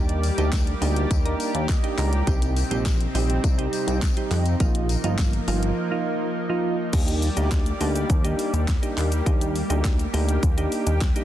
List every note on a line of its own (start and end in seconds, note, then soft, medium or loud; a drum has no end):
0.00 0.31 D#2 loud
0.00 2.23 G3 medium
0.00 0.20 A#3 medium
0.00 2.23 A#3 medium
0.00 0.20 D4 medium
0.00 0.20 D#4 medium
0.00 0.21 G4 medium
0.00 4.56 G4 medium
0.00 2.23 D5 medium
0.09 closed hi-hat medium
0.23 open hi-hat medium
0.23 tambourine medium
0.38 0.74 D2 medium
0.38 0.64 A#3 medium
0.38 0.64 D4 medium
0.38 0.64 D#4 medium
0.38 0.64 G4 medium
0.38 closed hi-hat medium
0.38 tambourine soft
0.52 kick loud
0.52 snare loud
0.52 clap loud
0.52 closed hi-hat medium
0.52 tambourine medium
0.67 closed hi-hat medium
0.81 1.06 D2 loud
0.81 1.08 A#3 medium
0.81 1.08 D4 medium
0.81 1.08 D#4 medium
0.81 1.08 G4 loud
0.81 open hi-hat medium
0.81 tambourine medium
0.96 closed hi-hat medium
1.11 1.35 D#2 loud
1.11 kick loud
1.11 closed hi-hat medium
1.11 tambourine medium
1.25 1.60 A#3 medium
1.25 1.60 D4 medium
1.25 1.60 D#4 medium
1.25 1.60 A#4 loud
1.25 closed hi-hat medium
1.40 open hi-hat medium
1.40 tambourine medium
1.54 1.79 D#2 medium
1.54 closed hi-hat medium
1.69 1.96 D#5 medium
1.69 kick loud
1.69 snare medium
1.69 clap loud
1.69 closed hi-hat medium
1.69 tambourine medium
1.83 2.10 A#3 medium
1.83 2.10 D4 medium
1.83 2.10 D#4 medium
1.83 2.10 G4 medium
1.83 closed hi-hat medium
1.98 2.22 C#2 medium
1.98 2.25 A#5 medium
1.98 clap medium
1.98 open hi-hat medium
1.98 tambourine medium
2.13 closed hi-hat soft
2.27 2.64 C2 loud
2.27 4.58 C3 medium
2.27 2.53 G3 medium
2.27 2.53 C4 medium
2.27 4.58 C4 medium
2.27 2.54 D#4 medium
2.27 6.90 D#4 medium
2.27 2.54 G4 loud
2.27 kick loud
2.27 closed hi-hat medium
2.27 tambourine soft
2.42 closed hi-hat medium
2.42 tambourine soft
2.57 open hi-hat medium
2.57 tambourine medium
2.71 3.07 A#1 medium
2.71 2.97 G3 medium
2.71 2.97 C4 medium
2.71 2.97 D#4 medium
2.71 2.97 G4 medium
2.71 closed hi-hat medium
2.71 tambourine soft
2.86 kick loud
2.86 snare loud
2.86 clap loud
2.86 closed hi-hat medium
2.86 tambourine medium
3.01 closed hi-hat medium
3.14 3.39 A#1 loud
3.14 3.41 G3 medium
3.14 3.41 C4 medium
3.14 3.41 D#4 medium
3.14 3.41 G4 loud
3.14 open hi-hat medium
3.14 tambourine medium
3.30 closed hi-hat medium
3.44 3.68 C2 medium
3.44 kick loud
3.44 closed hi-hat medium
3.44 tambourine medium
3.58 3.93 G3 medium
3.58 3.93 C4 medium
3.58 3.93 D#4 medium
3.58 3.93 G4 loud
3.58 closed hi-hat medium
3.73 open hi-hat medium
3.73 tambourine medium
3.87 4.12 C2 medium
3.87 closed hi-hat medium
3.87 tambourine soft
4.02 kick loud
4.02 snare medium
4.02 clap loud
4.02 closed hi-hat medium
4.02 tambourine medium
4.17 4.43 G3 medium
4.17 4.43 C4 medium
4.17 4.43 D#4 medium
4.17 4.43 G4 medium
4.17 closed hi-hat medium
4.31 4.55 F2 loud
4.31 clap medium
4.31 open hi-hat medium
4.31 tambourine soft
4.46 closed hi-hat soft
4.46 tambourine soft
4.60 4.97 A#1 loud
4.60 6.91 F3 medium
4.60 4.86 F3 medium
4.60 6.91 A#3 medium
4.60 4.86 A#3 medium
4.60 4.87 D#4 medium
4.60 4.87 F4 loud
4.60 kick loud
4.60 closed hi-hat medium
4.60 tambourine soft
4.75 closed hi-hat medium
4.89 open hi-hat medium
4.89 tambourine medium
5.04 5.40 G1 medium
5.04 5.30 F3 medium
5.04 5.30 A#3 medium
5.04 5.30 D#4 medium
5.04 5.30 F4 medium
5.04 closed hi-hat medium
5.04 tambourine soft
5.18 kick loud
5.18 snare loud
5.18 clap loud
5.18 closed hi-hat medium
5.18 tambourine medium
5.33 closed hi-hat medium
5.48 5.72 G1 loud
5.48 5.74 F3 medium
5.48 5.74 A#3 medium
5.48 5.74 D#4 medium
5.48 5.74 F4 loud
5.48 open hi-hat medium
5.48 tambourine medium
5.63 closed hi-hat medium
5.91 6.26 F3 medium
5.91 6.26 A#3 medium
5.91 6.26 D#4 medium
5.91 6.26 F4 loud
6.49 6.76 F3 medium
6.49 6.76 A#3 medium
6.49 6.76 D#4 medium
6.49 6.76 F4 medium
6.93 7.29 D#2 loud
6.93 11.24 G3 medium
6.93 7.19 A#3 medium
6.93 11.24 A#3 medium
6.93 7.19 D4 medium
6.93 7.19 D#4 medium
6.93 11.24 G4 medium
6.93 7.19 G4 medium
6.93 9.24 D5 medium
6.93 kick loud
6.93 closed hi-hat medium
6.93 crash loud
6.93 shaker medium
7.08 closed hi-hat medium
7.08 shaker medium
7.22 open hi-hat medium
7.22 shaker medium
7.37 7.73 D2 medium
7.37 7.63 A#3 medium
7.37 7.63 D4 medium
7.37 7.63 D#4 medium
7.37 7.63 G4 medium
7.37 closed hi-hat medium
7.37 shaker medium
7.51 kick loud
7.51 snare loud
7.51 clap loud
7.51 closed hi-hat medium
7.51 shaker medium
7.66 closed hi-hat medium
7.66 shaker medium
7.81 8.05 D2 loud
7.81 8.07 A#3 medium
7.81 8.07 D4 medium
7.81 8.07 D#4 medium
7.81 8.07 G4 loud
7.81 open hi-hat medium
7.81 shaker medium
7.96 closed hi-hat medium
7.96 shaker medium
8.10 8.34 D#2 loud
8.10 kick loud
8.10 closed hi-hat medium
8.10 shaker medium
8.24 8.59 A#3 medium
8.24 8.59 D4 medium
8.24 8.59 D#4 medium
8.24 8.59 G4 loud
8.24 closed hi-hat medium
8.24 shaker medium
8.39 open hi-hat medium
8.39 shaker medium
8.53 8.78 D#2 medium
8.53 closed hi-hat medium
8.53 shaker medium
8.68 kick loud
8.68 snare medium
8.68 clap loud
8.68 closed hi-hat medium
8.68 shaker medium
8.82 9.09 A#3 medium
8.82 9.09 D4 medium
8.82 9.09 D#4 medium
8.82 9.09 G4 medium
8.82 closed hi-hat medium
8.82 shaker medium
8.97 9.21 D#2 medium
8.97 clap medium
8.97 open hi-hat medium
8.97 shaker soft
9.12 closed hi-hat medium
9.12 shaker medium
9.26 9.63 D#2 loud
9.26 9.52 A#3 medium
9.26 9.52 D4 medium
9.26 9.52 D#4 medium
9.26 9.53 G4 loud
9.26 kick loud
9.26 closed hi-hat medium
9.26 shaker medium
9.41 closed hi-hat medium
9.41 shaker medium
9.56 open hi-hat medium
9.56 shaker medium
9.70 10.06 D2 medium
9.70 9.96 A#3 medium
9.70 9.96 D4 medium
9.70 9.96 D#4 medium
9.70 9.96 G4 medium
9.70 closed hi-hat medium
9.70 shaker medium
9.85 kick loud
9.85 snare loud
9.85 clap loud
9.85 closed hi-hat medium
9.85 shaker medium
9.99 closed hi-hat soft
9.99 shaker medium
10.13 10.38 D2 loud
10.13 10.40 A#3 medium
10.13 10.40 D4 medium
10.13 10.40 D#4 medium
10.13 10.40 G4 loud
10.13 open hi-hat medium
10.13 shaker medium
10.29 closed hi-hat medium
10.29 shaker medium
10.43 10.67 D#2 loud
10.43 kick loud
10.43 closed hi-hat medium
10.43 shaker medium
10.57 10.92 A#3 medium
10.57 10.92 D4 medium
10.57 10.92 D#4 medium
10.57 10.93 G4 loud
10.57 closed hi-hat medium
10.57 shaker medium
10.72 open hi-hat medium
10.72 shaker medium
10.87 11.11 D#2 medium
10.87 closed hi-hat medium
10.87 shaker medium
11.01 kick loud
11.01 snare medium
11.01 clap loud
11.01 closed hi-hat medium
11.01 shaker medium
11.16 11.24 A#3 medium
11.16 11.24 D4 medium
11.16 11.24 D#4 medium
11.16 11.24 G4 loud
11.16 closed hi-hat medium
11.16 shaker medium